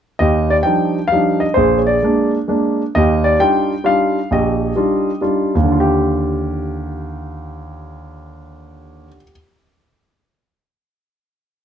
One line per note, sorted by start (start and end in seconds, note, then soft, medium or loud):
0.19 0.60 D#2 medium
0.19 0.94 G4 medium
0.19 0.51 D#5 medium
0.50 0.55 D5 medium
0.63 0.98 F3 soft
0.63 0.98 G3 soft
0.63 0.98 D4 soft
0.63 0.98 D#4 medium
0.63 1.11 G5 medium
1.08 1.42 F5 medium
1.12 1.44 F3 soft
1.12 1.44 G3 soft
1.12 1.44 D4 soft
1.12 1.45 D#4 medium
1.40 1.55 D#5 medium
1.54 1.97 A#1 medium
1.54 2.31 G#4 medium
1.54 1.78 C5 medium
1.78 1.88 C#5 medium
1.87 2.30 D5 medium
2.03 2.35 G#3 medium
2.03 2.36 A#3 medium
2.03 2.36 D4 medium
2.48 2.81 G#3 medium
2.48 2.81 A#3 soft
2.48 2.82 D4 medium
2.95 3.35 D#2 medium
2.95 3.69 G4 medium
2.95 3.27 D#5 medium
3.24 3.39 D5 medium
3.39 3.72 G3 medium
3.39 3.73 D4 soft
3.39 3.73 D#4 soft
3.39 3.73 F4 medium
3.39 3.88 G5 medium
3.84 4.18 G3 medium
3.84 4.18 D4 soft
3.84 4.18 D#4 soft
3.84 4.18 F4 medium
3.84 4.29 F5 medium
4.31 4.71 A#1 medium
4.31 5.20 G4 medium
4.31 5.20 D#5 medium
4.76 5.09 G3 medium
4.76 5.10 D4 soft
4.76 5.10 D#4 soft
4.76 5.10 F4 medium
5.21 5.55 G3 medium
5.21 5.55 D4 soft
5.21 5.55 D#4 soft
5.21 5.56 F4 medium
5.55 9.06 D#2 medium
5.63 9.14 D3 medium
5.72 9.23 F4 medium
5.80 9.31 G4 medium